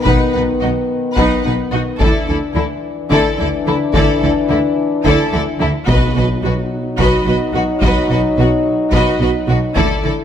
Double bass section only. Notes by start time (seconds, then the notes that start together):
0.06 B1
0.34 B1
0.61 B1
1.17 B1
1.44 B1
1.72 B1
2.00 D2
2.28 D2
2.55 D2
3.11 D2
3.39 D2
3.67 D2
3.95 D2
4.23 D2
4.50 D2
5.06 D2
5.33 D2
5.61 D2
5.89 B1
6.17 B1
6.43 B1
6.99 B1
7.26 B1
7.53 B1
7.82 B1
8.09 B1
8.37 B1
8.92 B1
9.19 B1
9.48 B1
9.76 D2
10.04 D2